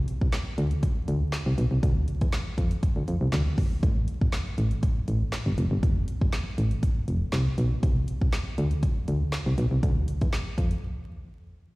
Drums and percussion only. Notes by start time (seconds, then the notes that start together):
0.08 closed hi-hat
0.22 kick
0.33 snare, clap, closed hi-hat
0.58 closed hi-hat
0.71 closed hi-hat
0.83 kick, closed hi-hat
1.08 closed hi-hat
1.32 snare, clap, closed hi-hat
1.58 closed hi-hat
1.83 kick, closed hi-hat
2.08 closed hi-hat
2.21 kick, closed hi-hat
2.33 snare, clap, closed hi-hat
2.58 kick, closed hi-hat
2.71 closed hi-hat
2.83 kick, closed hi-hat
3.08 closed hi-hat
3.32 snare, clap, closed hi-hat
3.58 kick, open hi-hat
3.83 kick, closed hi-hat
4.08 closed hi-hat
4.21 kick
4.33 snare, clap, closed hi-hat
4.58 closed hi-hat
4.71 closed hi-hat
4.83 kick, closed hi-hat
5.08 closed hi-hat
5.32 snare, clap, closed hi-hat
5.58 closed hi-hat
5.83 kick, closed hi-hat
6.08 closed hi-hat
6.21 kick
6.33 snare, clap, closed hi-hat
6.58 closed hi-hat
6.71 closed hi-hat
6.83 kick, closed hi-hat
7.08 closed hi-hat
7.32 snare, clap, closed hi-hat
7.58 closed hi-hat
7.83 kick, closed hi-hat
8.08 closed hi-hat
8.21 kick
8.33 snare, clap, closed hi-hat
8.58 closed hi-hat
8.71 closed hi-hat
8.83 kick, closed hi-hat
9.08 closed hi-hat
9.32 snare, clap, closed hi-hat
9.58 closed hi-hat
9.83 kick, closed hi-hat
10.08 closed hi-hat
10.21 kick, closed hi-hat
10.33 snare, clap, closed hi-hat
10.58 kick, closed hi-hat
10.71 closed hi-hat